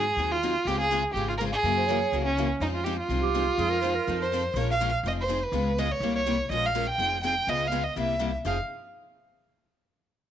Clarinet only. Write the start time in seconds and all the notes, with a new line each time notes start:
1.77 C5
1.87 C#5
3.22 G4
3.58 G#4
3.70 A#4
3.82 C5
3.95 A#4
8.46 G#4